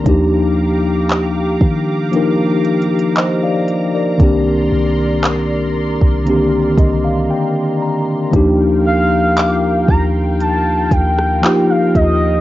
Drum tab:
HH |x-----------x-----------x-----x-x-x-x-----x-----|x-----------x-----------x-----x-----------------|x-----------x-----------x-----x-----x-----x-----|
CP |------------x-----------------------x-----------|------------x-----------------------------------|------------x-----------------------x-----------|
SD |------------------------------------------------|------------------------------------------------|---------------------------------r--------------|
BD |o-----------------o-----------------------------|o--------------------o--------o-----------------|o-----------------o-----------o-----------o-----|